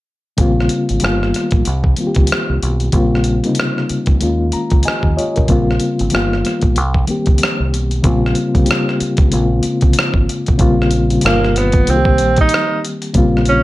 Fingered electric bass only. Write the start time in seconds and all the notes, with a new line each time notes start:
0.39 A#1
0.90 G#1
1.03 G1
1.53 A#1
1.67 C2
1.99 muted fingered electric bass stroke
2.17 C#2
2.50 C2
2.63 B1
2.94 A#1
3.90 muted fingered electric bass stroke
4.08 C#2
4.22 D#2
4.54 muted fingered electric bass stroke
4.72 C#2
4.86 muted fingered electric bass stroke
5.03 D#2
5.38 B1
5.49 A#1
6.01 G#1
6.14 G1
6.63 A#1
6.77 C2
7.09 muted fingered electric bass stroke
7.28 C#2
7.60 C2
7.73 B1
8.05 A#1
8.55 C2
9.01 muted fingered electric bass stroke
9.19 C#2
9.33 A#1
9.65 muted fingered electric bass stroke
9.83 C2
9.97 muted fingered electric bass stroke
10.14 G#1
10.49 B1
10.60 A#1
11.25 G1
11.88 C2
12.20 A#1
13.15 A#1